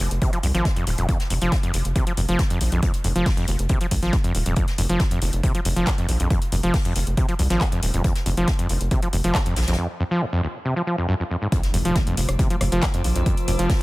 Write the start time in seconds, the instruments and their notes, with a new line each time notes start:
0.00 closed hi-hat
0.11 analog synth bass F1, closed hi-hat
0.22 acid bass C3, kick, closed hi-hat
0.33 acid bass F3, closed hi-hat
0.43 analog synth bass C2, acid bass F2, closed hi-hat, open hi-hat
0.55 analog synth bass G#1, acid bass F3, snare, closed hi-hat
0.65 acid bass F2, kick, snare, closed hi-hat
0.76 acid bass F2, closed hi-hat
0.87 analog synth bass D#1, acid bass D#2, closed hi-hat, open hi-hat
0.98 analog synth bass D#1, acid bass F2, closed hi-hat
1.09 kick, closed hi-hat
1.20 snare, closed hi-hat
1.30 analog synth bass F1, acid bass F2, closed hi-hat, open hi-hat
1.42 analog synth bass F1, acid bass F3, closed hi-hat
1.52 acid bass F2, kick, snare, closed hi-hat
1.63 acid bass F2, closed hi-hat
1.73 analog synth bass F1, acid bass D#2, closed hi-hat, open hi-hat
1.85 analog synth bass F1, closed hi-hat
1.96 acid bass C3, kick, closed hi-hat
2.07 acid bass F3, closed hi-hat
2.17 analog synth bass F1, acid bass F2, closed hi-hat, open hi-hat
2.29 analog synth bass F1, acid bass F3, closed hi-hat
2.39 acid bass F2, kick, snare, closed hi-hat
2.50 acid bass F2, closed hi-hat
2.61 analog synth bass A#1, acid bass D#2, closed hi-hat, open hi-hat
2.72 analog synth bass A#1, acid bass F2, closed hi-hat
2.83 acid bass F2, kick, closed hi-hat
2.94 closed hi-hat
3.04 analog synth bass F1, acid bass F2, closed hi-hat, open hi-hat
3.15 analog synth bass F1, acid bass F3, closed hi-hat
3.26 acid bass F2, kick, snare, closed hi-hat, open hi-hat
3.37 acid bass F2, closed hi-hat
3.48 analog synth bass F1, acid bass D#2, closed hi-hat, open hi-hat
3.59 analog synth bass F1, closed hi-hat
3.69 acid bass C3, kick, closed hi-hat
3.81 acid bass F3, closed hi-hat
3.91 analog synth bass C2, acid bass F2, kick, closed hi-hat, open hi-hat
4.02 analog synth bass G#1, acid bass F3, snare, closed hi-hat
4.13 acid bass F2, kick, snare, closed hi-hat
4.24 acid bass F2, closed hi-hat
4.35 analog synth bass D#1, acid bass D#2, closed hi-hat, open hi-hat
4.46 analog synth bass D#1, acid bass F2, closed hi-hat
4.56 acid bass F2, kick, closed hi-hat
4.68 snare, closed hi-hat
4.78 analog synth bass F1, acid bass F2, closed hi-hat, open hi-hat
4.89 analog synth bass F1, acid bass F3, closed hi-hat
4.99 acid bass F2, kick, snare, closed hi-hat
5.11 acid bass F2, closed hi-hat
5.22 analog synth bass F1, acid bass D#2, closed hi-hat, open hi-hat
5.33 analog synth bass F1, closed hi-hat
5.43 acid bass C3, kick, closed hi-hat
5.55 acid bass F3, closed hi-hat
5.65 analog synth bass F1, acid bass F2, closed hi-hat, open hi-hat
5.76 analog synth bass F1, acid bass F3, closed hi-hat
5.86 acid bass F2, kick, snare, clap, closed hi-hat
5.98 acid bass F2, closed hi-hat
6.09 analog synth bass A#1, acid bass D#2, closed hi-hat, open hi-hat
6.20 analog synth bass A#1, acid bass F2, closed hi-hat
6.30 acid bass F2, kick, closed hi-hat
6.42 closed hi-hat
6.52 analog synth bass F1, acid bass F2, closed hi-hat, open hi-hat
6.63 analog synth bass F1, acid bass F3, closed hi-hat
6.74 acid bass F2, kick, snare, closed hi-hat, open hi-hat
6.85 acid bass F2, closed hi-hat
6.96 analog synth bass F1, acid bass D#2, closed hi-hat, open hi-hat
7.07 analog synth bass F1, closed hi-hat
7.17 acid bass C3, kick, closed hi-hat
7.29 acid bass F3, closed hi-hat
7.39 analog synth bass C2, acid bass F2, closed hi-hat, open hi-hat
7.50 analog synth bass G#1, acid bass F3, snare, closed hi-hat
7.61 acid bass F2, kick, snare, clap, closed hi-hat
7.72 acid bass F2, closed hi-hat
7.83 analog synth bass D#1, acid bass D#2, closed hi-hat, open hi-hat
7.94 analog synth bass D#1, acid bass F2, closed hi-hat
8.04 acid bass F2, kick, closed hi-hat
8.15 snare, closed hi-hat
8.26 analog synth bass F1, acid bass F2, closed hi-hat, open hi-hat
8.37 analog synth bass F1, acid bass F3, closed hi-hat
8.47 acid bass F2, kick, snare, closed hi-hat
8.59 acid bass F2, closed hi-hat
8.69 analog synth bass F1, acid bass D#2, closed hi-hat, open hi-hat
8.81 analog synth bass F1, closed hi-hat
8.91 acid bass C3, kick, closed hi-hat
9.02 acid bass F3, closed hi-hat
9.13 analog synth bass F1, acid bass F2, closed hi-hat, open hi-hat
9.24 analog synth bass F1, acid bass F3, closed hi-hat
9.35 acid bass F2, kick, snare, clap, closed hi-hat
9.46 acid bass F2, closed hi-hat
9.56 analog synth bass A#1, acid bass D#2, snare, closed hi-hat, open hi-hat
9.62 snare, closed hi-hat
9.68 analog synth bass A#1, acid bass F2, snare, closed hi-hat
9.73 snare, closed hi-hat
9.78 acid bass F2
10.00 acid bass F2
10.11 acid bass F3
10.22 acid bass F2
10.33 acid bass F2
10.43 acid bass D#2
10.65 acid bass C3
10.76 acid bass F3
10.87 acid bass F3
10.98 acid bass F2
11.09 acid bass F#2
11.20 acid bass F2
11.31 acid bass F2
11.42 acid bass G#2
11.52 acid bass F2, synth drone F3 F4, kick, closed hi-hat, impact
11.63 snare, closed hi-hat
11.74 analog synth bass F1, acid bass F2, closed hi-hat, open hi-hat
11.85 analog synth bass F1, acid bass F3, closed hi-hat
11.96 acid bass F2, kick, snare, closed hi-hat
12.07 acid bass F2, closed hi-hat
12.17 analog synth bass F1, acid bass D#2, closed hi-hat, open hi-hat
12.29 analog synth bass F1, cross-stick, closed hi-hat
12.39 acid bass C3, kick, closed hi-hat
12.50 acid bass F3, closed hi-hat
12.61 analog synth bass F1, acid bass F2, cross-stick, closed hi-hat, open hi-hat
12.72 analog synth bass F1, acid bass F3, closed hi-hat
12.82 acid bass F2, kick, snare, clap, closed hi-hat
12.94 acid bass F2, closed hi-hat
13.04 analog synth bass A#1, acid bass D#2, closed hi-hat, open hi-hat
13.15 analog synth bass A#1, acid bass F2, closed hi-hat
13.26 acid bass F2, kick, closed hi-hat
13.37 closed hi-hat
13.47 analog synth bass F1, acid bass F2, closed hi-hat, open hi-hat
13.59 analog synth bass F1, acid bass F3, closed hi-hat
13.70 acid bass F2, kick, snare, closed hi-hat, open hi-hat